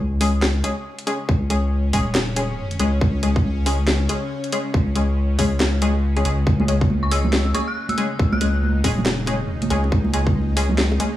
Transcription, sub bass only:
0.00 C#2
1.29 C#2
1.93 D#1
2.80 C#2
3.01 C#2
3.45 C#2
4.74 C#2
5.39 C#2
6.25 C#2
6.47 C#2
6.90 C#2
8.19 C#2
8.84 D#1
9.71 C#2
9.92 C#2
10.35 C#2

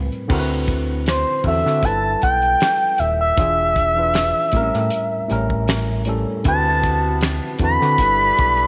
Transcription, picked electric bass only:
0.30 D2
1.44 E2
1.66 D3
1.83 G1
2.24 B1
3.00 D#1
3.38 E1
4.53 A1
4.75 A2
5.31 A1
6.46 D2
7.60 E2
7.82 D3
7.99 G1
8.39 B1

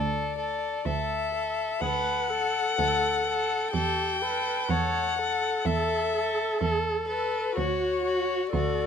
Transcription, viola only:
1.81 B4
2.29 A4
3.73 G4
4.22 B4
4.70 C#5
5.18 A4
7.57 F#4
8.53 A4

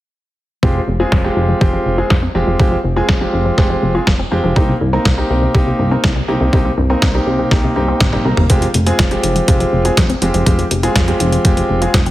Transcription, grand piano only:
0.63 G#3 C4 F4 G4
1.00 G#3 C4 F4 G#4
1.24 G#3 C4 F4 G4
1.61 G#3 C4 F4 G4
1.98 G#3 C4 F4 G#4
2.35 G#3 C4 F4 G4
2.60 G#3 C4 F4 G4
2.96 G#3 C4 F4 G#4
3.21 G#3 C4 F4 G4
3.58 G#3 C4 F4 G4
3.95 G#3 C4 F4 G#4
4.32 G#3 C4 F4 G4
4.56 A#3 C4 D#4 G4
4.93 A#3 C4 D#4 A#4
5.18 A#3 C4 D#4 G4
5.55 A#3 C4 D#4 G4
5.91 A#3 C4 D#4 A#4
6.28 A#3 C4 D#4 G4
6.53 A#3 C4 D#4 G4
6.90 A#3 C4 D#4 A#4
7.14 A#3 C4 D#4 G4
7.51 A#3 C4 D#4 G4
7.76 A#3 C4 D#4 G4
8.13 A#3 C4 D#4 G4
8.25 A#3 C4 D#4 A#4
8.50 G#3 C4 F4 G4
8.87 G#3 C4 F4 G#4
9.11 G#3 C4 F4 G4
9.48 G#3 C4 F4 G4
9.85 G#3 C4 F4 G#4
10.22 G#3 C4 F4 G4
10.46 G#3 C4 F4 G4
10.83 G#3 C4 F4 G#4
11.08 G#3 C4 F4 G4
11.45 G#3 C4 F4 G4
11.82 G#3 C4 F4 G#4

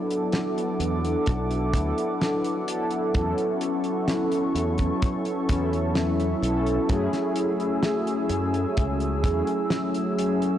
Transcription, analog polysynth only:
Already playing: F#3 B3 D4 E4 A4
1.73 F#3 B3 D4 E4 A4
2.67 F#3 B3 D4 E4 A4
3.13 F#3 B3 C#4 E4 A4
5.49 F#3 B3 C#4 E4 A4
6.42 F#3 B3 C#4 E4 A4
6.88 F#3 A3 C#4 E4 G#4
9.23 F#3 A3 C#4 E4 G#4
10.18 F#3 A3 C#4 E4 G#4

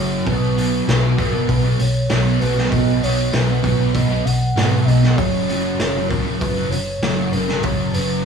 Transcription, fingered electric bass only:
Already playing: F#1
0.27 B1
0.88 B1
1.19 F#1
1.49 B1
1.80 B1
2.11 B1
2.42 B1
2.72 B1
3.03 B1
3.34 B1
3.64 B1
3.95 B1
4.25 B1
4.56 G#2
4.86 B1
5.18 F#1
5.79 F#1
6.10 C#2
6.41 F#1
6.71 F#1
7.02 F#1
7.33 F#1
7.64 F#1
7.96 F#1

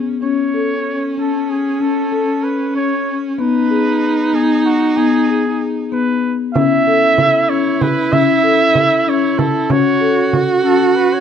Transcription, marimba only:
Already playing: B3
0.22 C#4
0.54 A4
1.17 C#4
1.80 C#4
2.12 A4
2.75 C#4
3.38 B3
3.70 G#4
4.33 B3
4.97 B3
5.29 G#4
5.92 B3
6.55 C#4
6.87 A4
7.49 C#4
8.13 C#4
8.43 A4
9.07 C#4
9.70 C#4
10.01 A4
10.64 C#4

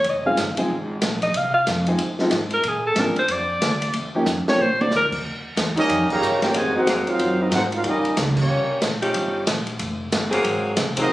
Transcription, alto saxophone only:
Already playing: C#5
0.10 D#5
0.26 F5
1.23 D#5
1.37 F5
1.54 F5
2.54 A#4
2.68 G#4
2.87 A4
3.00 A#4
3.19 C5
3.32 D5
4.49 C#5
4.61 C5
4.81 D5
4.96 A#4

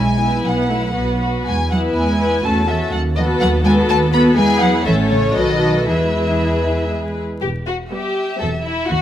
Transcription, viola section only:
0.19 B3 E4
0.45 B3
0.70 A3
0.96 B3
1.71 B3 E4
2.20 B3 E4
2.44 C#4 F#4
2.68 C#4 F#4
3.17 B3 F#4
3.64 B3 F#4
4.13 B3 F#4
4.36 B3 E4
4.85 A3 C#4
5.36 F#3 F#4
5.87 G#3 E4
7.91 G3 B3
8.40 F#3 C4

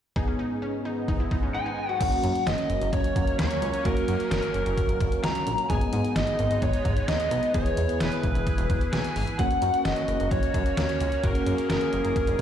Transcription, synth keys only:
0.16 B3 D#4 G#4
2.01 A#3 C#4 F#4
3.85 A#3 C#4 F#4
5.70 B3 D#4 G#4
7.31 B3 D#4 B4
7.54 B3 E4 G#4
9.39 A#3 C#4 F#4
11.24 A#3 C#4 F#4

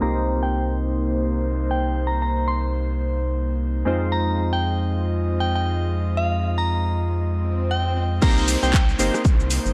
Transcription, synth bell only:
0.02 A#5
0.43 G5
1.71 G5
2.07 A#5
2.22 A#5
2.48 C6
4.12 A#5
4.53 G5
5.40 G5
5.55 G5
6.17 F5
6.58 A#5
7.71 G5
8.22 A#5
8.63 G5

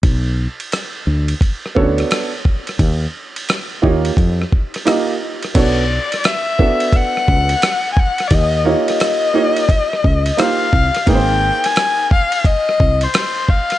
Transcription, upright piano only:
1.75 B3 C#4 F#4 A4 C#5
1.82 D4
3.82 A#3 D#4 F4 G4 C#5
4.85 A#3 D#4 F4 G4 D#5
5.54 B3 D4 F#4 A4 C#5
6.59 B3 D4 F#4 A4 E5
8.65 A#3 D#4 F4 G4 C#5
9.34 A#3 D#4 F4 G4 C#5
10.37 A#3 D#4 F4 G4 C5
11.06 A#3 D#4 G#4 B4
11.15 C5

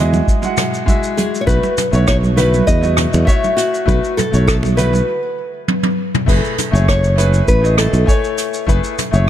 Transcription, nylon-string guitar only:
1.17 G#4
1.41 C#5
1.47 B4
2.08 C#5
2.37 B4
2.67 D#5
3.27 E5
3.57 F#4
4.17 A4
4.47 A4
4.77 B4
6.30 A4
6.89 C#5
7.48 B4
7.78 A4

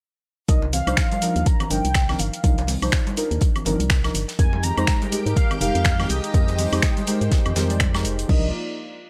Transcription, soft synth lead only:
0.49 D#5
0.73 F5
1.46 A#5
1.71 G5
2.19 F5
4.39 G#5
4.63 A#5
5.37 F5
5.61 F5
6.10 D#5
8.29 D#5

